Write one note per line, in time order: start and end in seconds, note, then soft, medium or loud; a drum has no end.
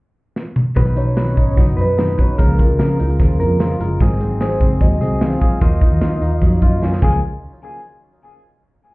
0.36 snare medium
0.56 mid tom medium
0.75 1.34 B1 medium
0.75 0.96 B2 medium
0.75 0.97 D#3 medium
0.75 0.97 F#3 medium
0.75 0.95 B3 medium
0.75 0.95 D#4 medium
0.75 0.85 B4 medium
0.75 0.93 B4 medium
0.75 kick medium
0.75 closed hi-hat medium
0.95 1.16 F#3 soft
0.95 1.16 B3 soft
0.95 1.16 D#4 medium
0.95 1.16 B4 soft
0.95 1.61 C#5 loud
0.95 closed hi-hat medium
1.16 1.37 B2 medium
1.16 1.37 D#3 medium
1.16 1.37 F#3 medium
1.16 1.36 B3 medium
1.16 1.36 D#4 medium
1.16 1.34 B4 medium
1.16 snare medium
1.16 closed hi-hat medium
1.36 1.55 G#1 medium
1.36 1.54 F#3 soft
1.36 1.56 B3 soft
1.36 1.56 D#4 soft
1.36 1.57 B4 soft
1.36 kick medium
1.36 closed hi-hat medium
1.55 1.75 F#1 medium
1.55 1.77 F#3 medium
1.55 1.77 B3 medium
1.55 1.76 D#4 medium
1.55 1.75 B4 medium
1.55 kick medium
1.55 snare soft
1.55 closed hi-hat medium
1.60 1.82 D#5 loud
1.77 2.13 F#2 medium
1.77 1.97 F#3 soft
1.77 1.97 B3 soft
1.77 1.97 D#4 soft
1.77 1.98 B4 soft
1.77 2.22 B4 loud
1.77 closed hi-hat medium
1.97 2.18 B2 medium
1.97 2.18 D#3 medium
1.97 2.18 F#3 medium
1.97 2.18 B3 medium
1.97 2.17 D#4 medium
1.97 2.16 B4 medium
1.97 snare loud
1.97 closed hi-hat medium
2.17 2.38 F#3 soft
2.17 2.39 B3 soft
2.17 2.39 D#4 soft
2.17 2.38 B4 soft
2.17 2.40 C#5 medium
2.17 kick medium
2.17 closed hi-hat medium
2.38 2.65 C#2 medium
2.38 2.59 C#3 medium
2.38 2.59 F3 medium
2.38 2.59 G#3 medium
2.38 2.59 F4 medium
2.38 2.57 A#4 medium
2.38 2.97 A#4 medium
2.38 kick loud
2.38 closed hi-hat medium
2.58 2.79 G#3 soft
2.58 2.79 F4 soft
2.58 2.79 A#4 soft
2.58 kick medium
2.58 closed hi-hat medium
2.70 2.78 C#2 medium
2.79 3.00 C#3 medium
2.79 2.97 C#3 loud
2.79 3.00 F3 medium
2.79 3.00 G#3 medium
2.79 3.00 F4 medium
2.79 2.98 A#4 medium
2.79 snare medium
2.79 closed hi-hat medium
2.99 3.17 C#2 medium
2.99 3.20 G#3 soft
2.99 3.10 D#4 medium
2.99 3.20 F4 medium
2.99 3.20 A#4 medium
2.99 closed hi-hat medium
3.10 3.59 F4 medium
3.20 3.37 D#2 medium
3.20 3.40 F3 medium
3.20 3.41 G#3 medium
3.20 3.39 F4 medium
3.20 3.58 A#4 medium
3.20 3.38 A#4 medium
3.20 kick medium
3.20 snare soft
3.20 closed hi-hat medium
3.39 3.74 F2 medium
3.39 3.59 G#3 soft
3.39 3.60 F4 soft
3.39 3.60 A#4 medium
3.39 closed hi-hat medium
3.59 3.80 C#3 medium
3.59 3.80 F3 medium
3.59 3.80 G#3 medium
3.59 3.80 F4 medium
3.59 3.79 A#4 medium
3.59 snare loud
3.59 closed hi-hat medium
3.80 3.98 F#1 medium
3.80 4.00 G#3 soft
3.80 4.01 F4 medium
3.80 4.00 A#4 medium
3.80 closed hi-hat medium
4.00 4.58 G#1 medium
4.00 4.21 G#2 medium
4.00 4.21 D#3 medium
4.00 4.21 F#3 medium
4.00 4.21 G#3 medium
4.00 4.20 C4 medium
4.00 4.19 G#4 medium
4.00 kick medium
4.00 closed hi-hat medium
4.20 4.41 F#3 medium
4.20 4.41 G#3 medium
4.20 4.41 C4 soft
4.20 4.41 G#4 medium
4.20 closed hi-hat medium
4.41 4.61 G#2 medium
4.41 4.62 D#3 medium
4.41 4.62 F#3 medium
4.41 4.62 G#3 medium
4.41 4.61 C4 medium
4.41 4.60 G#4 medium
4.41 4.82 C5 medium
4.41 snare medium
4.41 closed hi-hat medium
4.60 4.78 F#1 medium
4.60 4.79 F#3 soft
4.60 4.80 G#3 soft
4.60 4.81 C4 medium
4.60 4.81 G#4 medium
4.60 kick medium
4.60 closed hi-hat medium
4.80 4.98 D#2 medium
4.80 5.01 F#3 medium
4.80 5.01 G#3 medium
4.80 5.01 C4 medium
4.80 5.00 G#4 medium
4.80 5.23 D#5 loud
4.80 kick medium
4.80 closed hi-hat medium
5.01 5.35 C2 medium
5.01 5.21 F#3 soft
5.01 5.21 G#3 soft
5.01 5.21 C4 soft
5.01 5.22 G#4 soft
5.01 closed hi-hat medium
5.21 5.41 G#2 medium
5.21 5.42 D#3 medium
5.21 5.42 F#3 medium
5.21 5.42 G#3 medium
5.21 5.40 C4 medium
5.21 5.39 G#4 medium
5.21 5.62 F5 loud
5.21 snare loud
5.21 closed hi-hat medium
5.41 5.60 F#3 soft
5.41 5.62 G#3 soft
5.41 5.62 C4 soft
5.41 5.61 G#4 soft
5.41 kick medium
5.41 closed hi-hat medium
5.61 5.87 D#2 medium
5.61 5.81 D#3 medium
5.61 5.82 F#3 medium
5.61 5.82 A#3 medium
5.61 5.81 D#4 medium
5.61 5.80 F4 medium
5.61 6.82 D#5 loud
5.61 kick loud
5.61 closed hi-hat medium
5.81 6.02 A#3 soft
5.81 6.02 D#4 soft
5.81 6.02 F4 medium
5.81 kick medium
5.81 closed hi-hat medium
5.92 6.00 D#2 medium
6.01 6.19 D#3 medium
6.01 6.22 D#3 medium
6.01 6.22 F#3 medium
6.01 6.23 A#3 medium
6.01 6.21 D#4 medium
6.01 6.20 F4 medium
6.01 snare medium
6.01 closed hi-hat medium
6.21 6.38 D#2 medium
6.21 6.41 A#3 soft
6.21 6.42 D#4 medium
6.21 6.42 F4 medium
6.21 closed hi-hat medium
6.41 6.59 F2 medium
6.41 6.62 F#3 medium
6.41 6.62 A#3 medium
6.41 6.61 D#4 medium
6.41 6.60 F4 medium
6.41 kick medium
6.41 closed hi-hat medium
6.61 7.01 F#2 medium
6.61 6.81 A#3 soft
6.61 6.82 D#4 soft
6.61 6.82 F4 medium
6.61 kick medium
6.61 closed hi-hat medium
6.81 7.02 D#3 medium
6.81 7.02 F#3 medium
6.81 7.02 A#3 medium
6.81 6.93 C#4 medium
6.81 7.03 D#4 medium
6.81 7.03 F4 medium
6.81 snare soft
6.93 7.03 D#4 soft
6.93 snare soft
7.02 7.21 C#2 medium
7.02 7.18 C#3 medium
7.02 7.18 F3 medium
7.02 7.19 G#3 medium
7.02 7.19 A#3 medium
7.02 7.19 F4 medium
7.02 7.19 G#4 loud
7.02 7.19 A#4 medium
7.02 7.21 G#5 medium
7.02 kick loud
7.02 crash medium